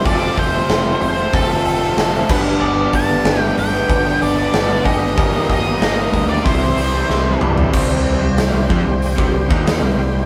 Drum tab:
CC |--------------x-|----------------|----------------|x---------------|
HH |o-o-o-o-o-o-o---|--o-o-o-o-o-o-o-|o-o-o-o-o-o-----|----o---o---o---|
SD |----o-------o---|----o-------o---|----o-------o---|----o-------o---|
T2 |----------------|----------------|--------------o-|----------------|
FT |----------------|----------------|---------------o|----------------|
BD |o-o-----o-----o-|--o-----o-----o-|o-o---o-o-------|o-----o--o-o----|